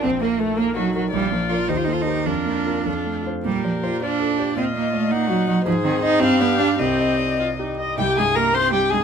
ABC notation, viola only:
X:1
M:6/8
L:1/8
Q:3/8=107
K:Eblyd
V:1 name="Viola"
C B, A, B, _G, G, | F3 G A G | F3 F2 z | G3 F A G |
F3 E3 | [K:Cm] A3 G3 | G3 F E e | G A B c G A |]